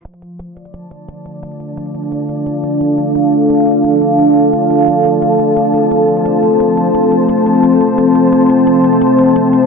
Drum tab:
HH |xxx-x-xxx-x-x-x-|xxx-xxxxx-x-x-x-|xxx-x-xxx-x-x-x-|xxx-xxxxx-x-x-x-|

HH |xxx-x-xxx-x-x-x-|xxx-xxxxx-x-x-x-|xxx-x-xxx-x-x-x-|